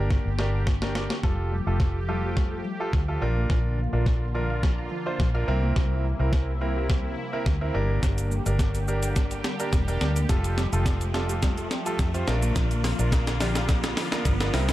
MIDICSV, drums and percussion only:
0, 0, Header, 1, 2, 480
1, 0, Start_track
1, 0, Tempo, 566038
1, 1049, Time_signature, 4, 2, 24, 8
1, 12490, End_track
2, 0, Start_track
2, 0, Title_t, "Drums"
2, 89, Note_on_c, 9, 36, 103
2, 89, Note_on_c, 9, 38, 56
2, 174, Note_off_c, 9, 36, 0
2, 174, Note_off_c, 9, 38, 0
2, 327, Note_on_c, 9, 38, 69
2, 412, Note_off_c, 9, 38, 0
2, 567, Note_on_c, 9, 38, 82
2, 568, Note_on_c, 9, 36, 111
2, 652, Note_off_c, 9, 36, 0
2, 652, Note_off_c, 9, 38, 0
2, 695, Note_on_c, 9, 38, 71
2, 779, Note_off_c, 9, 38, 0
2, 808, Note_on_c, 9, 38, 94
2, 893, Note_off_c, 9, 38, 0
2, 935, Note_on_c, 9, 38, 84
2, 1020, Note_off_c, 9, 38, 0
2, 1047, Note_on_c, 9, 36, 97
2, 1047, Note_on_c, 9, 38, 50
2, 1132, Note_off_c, 9, 36, 0
2, 1132, Note_off_c, 9, 38, 0
2, 1525, Note_on_c, 9, 36, 112
2, 1528, Note_on_c, 9, 38, 55
2, 1610, Note_off_c, 9, 36, 0
2, 1613, Note_off_c, 9, 38, 0
2, 2007, Note_on_c, 9, 38, 57
2, 2008, Note_on_c, 9, 36, 98
2, 2092, Note_off_c, 9, 38, 0
2, 2093, Note_off_c, 9, 36, 0
2, 2487, Note_on_c, 9, 36, 112
2, 2487, Note_on_c, 9, 38, 56
2, 2572, Note_off_c, 9, 36, 0
2, 2572, Note_off_c, 9, 38, 0
2, 2966, Note_on_c, 9, 38, 58
2, 2967, Note_on_c, 9, 36, 102
2, 3051, Note_off_c, 9, 38, 0
2, 3052, Note_off_c, 9, 36, 0
2, 3445, Note_on_c, 9, 36, 109
2, 3447, Note_on_c, 9, 38, 66
2, 3530, Note_off_c, 9, 36, 0
2, 3532, Note_off_c, 9, 38, 0
2, 3928, Note_on_c, 9, 36, 103
2, 3928, Note_on_c, 9, 38, 69
2, 4013, Note_off_c, 9, 36, 0
2, 4013, Note_off_c, 9, 38, 0
2, 4407, Note_on_c, 9, 36, 115
2, 4408, Note_on_c, 9, 38, 67
2, 4492, Note_off_c, 9, 36, 0
2, 4493, Note_off_c, 9, 38, 0
2, 4886, Note_on_c, 9, 38, 63
2, 4887, Note_on_c, 9, 36, 100
2, 4971, Note_off_c, 9, 38, 0
2, 4972, Note_off_c, 9, 36, 0
2, 5365, Note_on_c, 9, 36, 111
2, 5368, Note_on_c, 9, 38, 74
2, 5450, Note_off_c, 9, 36, 0
2, 5452, Note_off_c, 9, 38, 0
2, 5848, Note_on_c, 9, 36, 105
2, 5848, Note_on_c, 9, 38, 74
2, 5933, Note_off_c, 9, 36, 0
2, 5933, Note_off_c, 9, 38, 0
2, 6328, Note_on_c, 9, 36, 112
2, 6328, Note_on_c, 9, 38, 75
2, 6412, Note_off_c, 9, 38, 0
2, 6413, Note_off_c, 9, 36, 0
2, 6809, Note_on_c, 9, 36, 99
2, 6809, Note_on_c, 9, 38, 74
2, 6809, Note_on_c, 9, 42, 74
2, 6809, Note_on_c, 9, 82, 70
2, 6893, Note_off_c, 9, 38, 0
2, 6893, Note_off_c, 9, 42, 0
2, 6893, Note_off_c, 9, 82, 0
2, 6894, Note_off_c, 9, 36, 0
2, 6936, Note_on_c, 9, 42, 57
2, 6936, Note_on_c, 9, 82, 57
2, 7021, Note_off_c, 9, 42, 0
2, 7021, Note_off_c, 9, 82, 0
2, 7051, Note_on_c, 9, 82, 51
2, 7135, Note_off_c, 9, 82, 0
2, 7175, Note_on_c, 9, 42, 51
2, 7175, Note_on_c, 9, 82, 72
2, 7260, Note_off_c, 9, 42, 0
2, 7260, Note_off_c, 9, 82, 0
2, 7286, Note_on_c, 9, 36, 115
2, 7288, Note_on_c, 9, 38, 83
2, 7289, Note_on_c, 9, 42, 75
2, 7289, Note_on_c, 9, 82, 78
2, 7371, Note_off_c, 9, 36, 0
2, 7373, Note_off_c, 9, 38, 0
2, 7373, Note_off_c, 9, 42, 0
2, 7373, Note_off_c, 9, 82, 0
2, 7417, Note_on_c, 9, 42, 54
2, 7417, Note_on_c, 9, 82, 54
2, 7501, Note_off_c, 9, 42, 0
2, 7501, Note_off_c, 9, 82, 0
2, 7529, Note_on_c, 9, 82, 59
2, 7614, Note_off_c, 9, 82, 0
2, 7654, Note_on_c, 9, 42, 58
2, 7654, Note_on_c, 9, 82, 79
2, 7739, Note_off_c, 9, 42, 0
2, 7739, Note_off_c, 9, 82, 0
2, 7768, Note_on_c, 9, 42, 73
2, 7768, Note_on_c, 9, 82, 75
2, 7769, Note_on_c, 9, 38, 84
2, 7770, Note_on_c, 9, 36, 101
2, 7853, Note_off_c, 9, 38, 0
2, 7853, Note_off_c, 9, 42, 0
2, 7853, Note_off_c, 9, 82, 0
2, 7855, Note_off_c, 9, 36, 0
2, 7895, Note_on_c, 9, 42, 51
2, 7895, Note_on_c, 9, 82, 51
2, 7980, Note_off_c, 9, 42, 0
2, 7980, Note_off_c, 9, 82, 0
2, 8008, Note_on_c, 9, 38, 86
2, 8009, Note_on_c, 9, 82, 49
2, 8093, Note_off_c, 9, 38, 0
2, 8094, Note_off_c, 9, 82, 0
2, 8138, Note_on_c, 9, 42, 50
2, 8138, Note_on_c, 9, 82, 70
2, 8223, Note_off_c, 9, 42, 0
2, 8223, Note_off_c, 9, 82, 0
2, 8248, Note_on_c, 9, 38, 83
2, 8248, Note_on_c, 9, 42, 72
2, 8248, Note_on_c, 9, 82, 76
2, 8249, Note_on_c, 9, 36, 117
2, 8333, Note_off_c, 9, 38, 0
2, 8333, Note_off_c, 9, 42, 0
2, 8333, Note_off_c, 9, 82, 0
2, 8334, Note_off_c, 9, 36, 0
2, 8380, Note_on_c, 9, 42, 51
2, 8380, Note_on_c, 9, 82, 48
2, 8465, Note_off_c, 9, 42, 0
2, 8465, Note_off_c, 9, 82, 0
2, 8489, Note_on_c, 9, 38, 87
2, 8489, Note_on_c, 9, 82, 53
2, 8574, Note_off_c, 9, 38, 0
2, 8574, Note_off_c, 9, 82, 0
2, 8617, Note_on_c, 9, 42, 57
2, 8617, Note_on_c, 9, 82, 81
2, 8702, Note_off_c, 9, 42, 0
2, 8702, Note_off_c, 9, 82, 0
2, 8728, Note_on_c, 9, 38, 85
2, 8728, Note_on_c, 9, 42, 75
2, 8728, Note_on_c, 9, 82, 76
2, 8730, Note_on_c, 9, 36, 107
2, 8813, Note_off_c, 9, 38, 0
2, 8813, Note_off_c, 9, 42, 0
2, 8813, Note_off_c, 9, 82, 0
2, 8815, Note_off_c, 9, 36, 0
2, 8856, Note_on_c, 9, 42, 58
2, 8856, Note_on_c, 9, 82, 57
2, 8941, Note_off_c, 9, 42, 0
2, 8941, Note_off_c, 9, 82, 0
2, 8969, Note_on_c, 9, 38, 91
2, 8972, Note_on_c, 9, 82, 51
2, 9054, Note_off_c, 9, 38, 0
2, 9057, Note_off_c, 9, 82, 0
2, 9098, Note_on_c, 9, 42, 51
2, 9098, Note_on_c, 9, 82, 72
2, 9182, Note_off_c, 9, 42, 0
2, 9182, Note_off_c, 9, 82, 0
2, 9207, Note_on_c, 9, 36, 110
2, 9208, Note_on_c, 9, 38, 95
2, 9209, Note_on_c, 9, 42, 73
2, 9209, Note_on_c, 9, 82, 78
2, 9292, Note_off_c, 9, 36, 0
2, 9293, Note_off_c, 9, 38, 0
2, 9294, Note_off_c, 9, 42, 0
2, 9294, Note_off_c, 9, 82, 0
2, 9337, Note_on_c, 9, 42, 54
2, 9337, Note_on_c, 9, 82, 57
2, 9422, Note_off_c, 9, 42, 0
2, 9422, Note_off_c, 9, 82, 0
2, 9450, Note_on_c, 9, 38, 93
2, 9450, Note_on_c, 9, 82, 61
2, 9534, Note_off_c, 9, 38, 0
2, 9535, Note_off_c, 9, 82, 0
2, 9577, Note_on_c, 9, 42, 57
2, 9577, Note_on_c, 9, 82, 79
2, 9662, Note_off_c, 9, 42, 0
2, 9662, Note_off_c, 9, 82, 0
2, 9689, Note_on_c, 9, 38, 97
2, 9689, Note_on_c, 9, 42, 71
2, 9689, Note_on_c, 9, 82, 73
2, 9690, Note_on_c, 9, 36, 111
2, 9773, Note_off_c, 9, 42, 0
2, 9773, Note_off_c, 9, 82, 0
2, 9774, Note_off_c, 9, 38, 0
2, 9775, Note_off_c, 9, 36, 0
2, 9816, Note_on_c, 9, 42, 49
2, 9816, Note_on_c, 9, 82, 52
2, 9901, Note_off_c, 9, 42, 0
2, 9901, Note_off_c, 9, 82, 0
2, 9929, Note_on_c, 9, 38, 90
2, 9930, Note_on_c, 9, 82, 55
2, 10014, Note_off_c, 9, 38, 0
2, 10015, Note_off_c, 9, 82, 0
2, 10058, Note_on_c, 9, 42, 50
2, 10058, Note_on_c, 9, 82, 72
2, 10142, Note_off_c, 9, 42, 0
2, 10142, Note_off_c, 9, 82, 0
2, 10168, Note_on_c, 9, 38, 92
2, 10168, Note_on_c, 9, 42, 72
2, 10168, Note_on_c, 9, 82, 74
2, 10169, Note_on_c, 9, 36, 115
2, 10253, Note_off_c, 9, 38, 0
2, 10253, Note_off_c, 9, 42, 0
2, 10253, Note_off_c, 9, 82, 0
2, 10254, Note_off_c, 9, 36, 0
2, 10299, Note_on_c, 9, 42, 52
2, 10299, Note_on_c, 9, 82, 49
2, 10383, Note_off_c, 9, 42, 0
2, 10383, Note_off_c, 9, 82, 0
2, 10410, Note_on_c, 9, 38, 95
2, 10410, Note_on_c, 9, 82, 59
2, 10495, Note_off_c, 9, 38, 0
2, 10495, Note_off_c, 9, 82, 0
2, 10536, Note_on_c, 9, 42, 58
2, 10536, Note_on_c, 9, 82, 82
2, 10621, Note_off_c, 9, 42, 0
2, 10621, Note_off_c, 9, 82, 0
2, 10650, Note_on_c, 9, 36, 107
2, 10650, Note_on_c, 9, 38, 93
2, 10650, Note_on_c, 9, 42, 74
2, 10650, Note_on_c, 9, 82, 72
2, 10734, Note_off_c, 9, 38, 0
2, 10734, Note_off_c, 9, 42, 0
2, 10734, Note_off_c, 9, 82, 0
2, 10735, Note_off_c, 9, 36, 0
2, 10778, Note_on_c, 9, 42, 56
2, 10778, Note_on_c, 9, 82, 57
2, 10863, Note_off_c, 9, 42, 0
2, 10863, Note_off_c, 9, 82, 0
2, 10890, Note_on_c, 9, 38, 102
2, 10892, Note_on_c, 9, 46, 75
2, 10892, Note_on_c, 9, 82, 52
2, 10975, Note_off_c, 9, 38, 0
2, 10977, Note_off_c, 9, 46, 0
2, 10977, Note_off_c, 9, 82, 0
2, 11017, Note_on_c, 9, 42, 53
2, 11017, Note_on_c, 9, 82, 76
2, 11102, Note_off_c, 9, 42, 0
2, 11102, Note_off_c, 9, 82, 0
2, 11127, Note_on_c, 9, 36, 119
2, 11129, Note_on_c, 9, 38, 107
2, 11130, Note_on_c, 9, 42, 76
2, 11130, Note_on_c, 9, 82, 78
2, 11211, Note_off_c, 9, 36, 0
2, 11214, Note_off_c, 9, 38, 0
2, 11214, Note_off_c, 9, 42, 0
2, 11214, Note_off_c, 9, 82, 0
2, 11256, Note_on_c, 9, 38, 95
2, 11256, Note_on_c, 9, 42, 56
2, 11256, Note_on_c, 9, 82, 54
2, 11341, Note_off_c, 9, 38, 0
2, 11341, Note_off_c, 9, 42, 0
2, 11341, Note_off_c, 9, 82, 0
2, 11367, Note_on_c, 9, 38, 100
2, 11368, Note_on_c, 9, 46, 82
2, 11368, Note_on_c, 9, 82, 60
2, 11452, Note_off_c, 9, 38, 0
2, 11453, Note_off_c, 9, 46, 0
2, 11453, Note_off_c, 9, 82, 0
2, 11494, Note_on_c, 9, 42, 58
2, 11494, Note_on_c, 9, 82, 81
2, 11495, Note_on_c, 9, 38, 99
2, 11579, Note_off_c, 9, 38, 0
2, 11579, Note_off_c, 9, 42, 0
2, 11579, Note_off_c, 9, 82, 0
2, 11606, Note_on_c, 9, 42, 75
2, 11606, Note_on_c, 9, 82, 75
2, 11607, Note_on_c, 9, 38, 100
2, 11608, Note_on_c, 9, 36, 109
2, 11691, Note_off_c, 9, 42, 0
2, 11691, Note_off_c, 9, 82, 0
2, 11692, Note_off_c, 9, 38, 0
2, 11693, Note_off_c, 9, 36, 0
2, 11733, Note_on_c, 9, 42, 52
2, 11733, Note_on_c, 9, 82, 51
2, 11734, Note_on_c, 9, 38, 103
2, 11818, Note_off_c, 9, 42, 0
2, 11818, Note_off_c, 9, 82, 0
2, 11819, Note_off_c, 9, 38, 0
2, 11847, Note_on_c, 9, 38, 106
2, 11848, Note_on_c, 9, 46, 73
2, 11848, Note_on_c, 9, 82, 53
2, 11932, Note_off_c, 9, 38, 0
2, 11933, Note_off_c, 9, 46, 0
2, 11933, Note_off_c, 9, 82, 0
2, 11975, Note_on_c, 9, 38, 109
2, 11977, Note_on_c, 9, 42, 50
2, 11977, Note_on_c, 9, 82, 71
2, 12059, Note_off_c, 9, 38, 0
2, 12062, Note_off_c, 9, 42, 0
2, 12062, Note_off_c, 9, 82, 0
2, 12086, Note_on_c, 9, 42, 77
2, 12086, Note_on_c, 9, 82, 80
2, 12087, Note_on_c, 9, 36, 118
2, 12087, Note_on_c, 9, 38, 102
2, 12171, Note_off_c, 9, 42, 0
2, 12171, Note_off_c, 9, 82, 0
2, 12172, Note_off_c, 9, 36, 0
2, 12172, Note_off_c, 9, 38, 0
2, 12215, Note_on_c, 9, 38, 102
2, 12218, Note_on_c, 9, 42, 51
2, 12218, Note_on_c, 9, 82, 48
2, 12300, Note_off_c, 9, 38, 0
2, 12302, Note_off_c, 9, 42, 0
2, 12302, Note_off_c, 9, 82, 0
2, 12327, Note_on_c, 9, 38, 107
2, 12327, Note_on_c, 9, 46, 82
2, 12327, Note_on_c, 9, 82, 58
2, 12412, Note_off_c, 9, 38, 0
2, 12412, Note_off_c, 9, 46, 0
2, 12412, Note_off_c, 9, 82, 0
2, 12454, Note_on_c, 9, 38, 105
2, 12454, Note_on_c, 9, 42, 59
2, 12454, Note_on_c, 9, 82, 80
2, 12490, Note_off_c, 9, 38, 0
2, 12490, Note_off_c, 9, 42, 0
2, 12490, Note_off_c, 9, 82, 0
2, 12490, End_track
0, 0, End_of_file